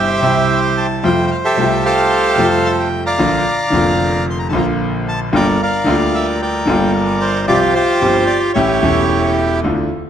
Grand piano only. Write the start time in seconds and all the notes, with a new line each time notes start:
Already playing: G1 G2 C3 E3 G3 E4
0.20 C2 C3 E3 G3 E4
1.03 F2 C3 F3 G3 A3 F4
1.56 C2 C3 G3 A3 F4
2.36 F2 C3 F3 G3 A3
2.40 F4
3.19 A#1 A#2 D3 F3 A#3 F4
3.70 F1 F2 D3 F3 A#3 F4
4.50 A#1 A#2 D3 F3 A#3 F4
5.33 G1 G2 D3 G3 A#3 F4
5.84 D2 D3 G3 A#3 F4
6.66 G1 G2 D3 G3 A#3 F4
7.48 C2 C3 F3 G3 C4 G4
8.02 G1 G2 F3 G3 C4 G4
8.56 A1 A2 E3 A3 C#4 G4
8.81 E1 E2 E3 A3 C#4 G4
9.64 D2 D3 E3 A3 D4 F4